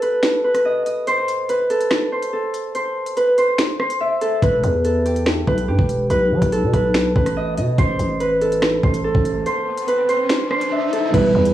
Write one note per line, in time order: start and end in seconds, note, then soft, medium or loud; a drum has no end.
0.00 1.33 G4 medium
0.00 1.69 A4 medium
0.00 0.44 B4 medium
0.00 closed hi-hat medium
0.23 finger snap medium
0.23 snare loud
0.23 closed hi-hat medium
0.44 1.13 B4 medium
0.54 cross-stick medium
0.54 closed hi-hat medium
0.65 0.86 D#5 medium
0.86 2.64 D#5 medium
0.86 closed hi-hat medium
1.07 1.55 C5 loud
1.07 closed hi-hat medium
1.28 closed hi-hat medium
1.49 2.18 B4 medium
1.49 closed hi-hat medium
1.70 2.32 A4 medium
1.70 closed hi-hat medium
1.80 closed hi-hat medium
1.90 finger snap medium
1.90 cross-stick medium
1.90 snare loud
2.12 2.74 C5 medium
2.22 closed hi-hat medium
2.33 4.21 A4 medium
2.54 closed hi-hat medium
2.75 3.23 C5 medium
2.75 closed hi-hat medium
3.06 closed hi-hat medium
3.17 3.44 B4 medium
3.17 closed hi-hat medium
3.38 3.79 C5 medium
3.38 closed hi-hat medium
3.58 finger snap medium
3.58 snare loud
3.58 closed hi-hat medium
3.80 4.49 C5 medium
3.80 cross-stick medium
3.90 closed hi-hat medium
4.01 5.73 E5 medium
4.22 4.84 A4 medium
4.22 closed hi-hat medium
4.43 4.63 E1 loud
4.43 5.47 B4 loud
4.43 kick loud
4.43 closed hi-hat medium
4.64 5.44 E2 loud
4.64 closed hi-hat medium
4.84 6.52 A4 medium
4.84 closed hi-hat medium
5.05 5.68 G4 medium
5.05 closed hi-hat medium
5.16 closed hi-hat medium
5.26 finger snap medium
5.26 cross-stick medium
5.26 snare loud
5.47 5.70 B1 loud
5.47 6.10 B4 medium
5.47 kick loud
5.58 closed hi-hat medium
5.68 5.78 G2 loud
5.68 8.04 G4 medium
5.79 6.09 E1 loud
5.79 kick loud
5.89 closed hi-hat medium
6.10 6.33 B1 loud
6.10 6.73 B4 loud
6.10 closed hi-hat medium
6.31 6.41 F#3 loud
6.42 6.64 B1 loud
6.42 kick medium
6.42 closed hi-hat medium
6.52 8.41 A4 loud
6.52 closed hi-hat medium
6.63 6.73 B2 loud
6.73 7.14 B1 loud
6.73 7.15 B4 medium
6.73 kick medium
6.73 closed hi-hat medium
6.94 finger snap medium
6.94 snare loud
6.94 closed hi-hat medium
7.15 7.59 A1 loud
7.15 7.84 B4 medium
7.15 kick loud
7.26 cross-stick medium
7.26 closed hi-hat medium
7.36 7.57 D#5 medium
7.57 7.77 B2 loud
7.57 9.36 D#5 medium
7.57 closed hi-hat medium
7.78 7.98 A1 loud
7.78 8.26 C5 loud
7.78 kick loud
7.78 closed hi-hat medium
7.78 riser medium
7.99 8.80 A1 loud
7.99 closed hi-hat medium
8.20 8.89 B4 medium
8.20 closed hi-hat medium
8.41 9.04 A4 medium
8.41 closed hi-hat medium
8.52 closed hi-hat medium
8.62 finger snap medium
8.62 cross-stick medium
8.62 snare loud
8.83 9.13 A1 loud
8.83 9.46 C5 medium
8.83 kick loud
8.94 closed hi-hat medium
9.04 10.92 A4 medium
9.15 9.45 A1 loud
9.15 kick medium
9.25 closed hi-hat medium
9.46 9.94 C5 medium
9.46 closed hi-hat medium
9.78 closed hi-hat medium
9.88 10.15 B4 medium
9.88 closed hi-hat medium
10.09 10.51 C5 medium
10.09 closed hi-hat medium
10.30 finger snap medium
10.30 snare loud
10.30 closed hi-hat medium
10.51 11.20 C5 medium
10.51 cross-stick medium
10.61 closed hi-hat medium
10.72 11.54 E5 medium
10.93 11.54 A4 medium
10.93 closed hi-hat medium
11.10 11.34 E1 loud
11.10 11.54 E3 medium
11.10 11.54 G3 medium
11.10 11.54 B3 medium
11.10 11.54 G4 medium
11.10 11.54 B4 medium
11.10 11.54 B4 loud
11.10 11.54 E5 medium
11.10 11.54 B5 medium
11.10 kick loud
11.10 closed hi-hat medium
11.10 crash loud
11.16 11.54 E4 medium
11.16 11.54 G4 medium
11.35 11.54 E2 loud
11.45 closed hi-hat medium